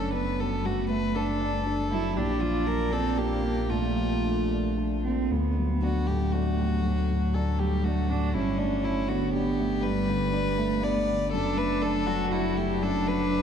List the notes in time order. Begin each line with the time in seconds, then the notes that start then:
Already playing: F#1 F#2 A3 C#4 D4 A4 D5
0.12 B3 D4 B4
0.39 F#3 A4
0.64 F#2 A3 F#4
0.90 A3 B4
1.15 D4 A4
1.41 D5
1.67 D4
1.91 F#3 E4
2.16 A#1 A#2 D4 G4
2.41 F3 F4
2.67 D4 A#4
2.92 C4 A4 D5
3.16 A#3 D4 G4
3.44 A#3
3.69 A#2 A3 F4
3.96 F3
4.24 D4
4.51 D5
4.77 D4
5.04 A#3 C4
5.31 D2 B3
5.58 F#3
5.82 D4 F#4 D5
6.07 A2 A3 G4
6.32 D4 F#4 D5
6.59 F#3
6.84 D2 F#3
7.10 A2
7.35 D4 A4 D5
7.59 F#3 G3 G4
7.84 A3 D4 F#4 D5
8.10 A2 D4
8.34 G1 G2 C#4 E4
8.58 A3 D4
8.84 D4 E4 D5
9.09 D3 B3 F#4
9.34 D4 G4 D5
9.60 A3
9.84 G2 G3 B4
10.10 D3
10.33 D4 D5
10.58 A3
10.82 B3 D4 D5
11.07 D3
11.32 F#1 F#2 D4 A4
11.57 A3 B4
11.82 D4 A4 D5
12.06 F#3 F#4
12.31 D4 E4 F#4 D5
12.57 A3 G4
12.82 F#2 D4 A4
13.06 F#3 B4
13.31 D4 D5